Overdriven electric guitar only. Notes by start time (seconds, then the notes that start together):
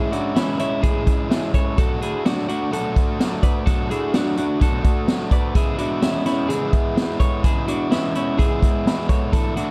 Already playing: A2 E3 G#3 C#4
0.11 G#3 C#4 E4
0.35 E3 G#3 C#4 E4
0.58 G#3 C#4 E4
0.81 A2 E3 G#3 C#4 E4
1.06 G#3 C#4 E4
1.29 E3 G#3 C#4 E4
1.53 G#3 C#4 E4
1.77 B2 F#3 A3 D4 F#4
2.00 A3 D4 F#4
2.24 F#3 A3 D4 F#4
2.48 A3 D4 F#4
2.71 B2 F#3 A3 D4 F#4
2.95 A3 D4 F#4
3.19 F#3 A3 D4 F#4
3.43 A3 D4 F#4
3.66 B2 F#3 A3 D4 F#4
3.90 A3 D4 F#4
4.14 F#3 A3 D4 F#4
4.36 A3 D4 F#4
4.60 B2 F#3 A3 D4 F#4
4.84 A3 D4 F#4
5.07 F#3 A3 D4 F#4
5.31 A3 D4 F#4
5.55 C#3 E3 G#3 B3 E4
5.79 G#3 B3 E4
6.03 E3 G#3 B3 E4
6.26 G#3 B3 E4
6.50 C#3 E3 G#3 B3 E4
6.73 G#3 B3 E4
6.96 E3 G#3 B3 E4
7.21 G#3 B3 E4
7.43 C#3 E3 G#3 B3 E4
7.67 G#3 B3 E4
7.90 E3 G#3 B3 E4
8.15 G#3 B3 E4
8.37 C#3 E3 G#3 B3 E4
8.61 G#3 B3 E4
8.85 E3 G#3 B3 E4
9.09 G#3 B3 E4
9.32 E2 B2 E3 A3 D4 E4
9.56 E3 A3 D4 E4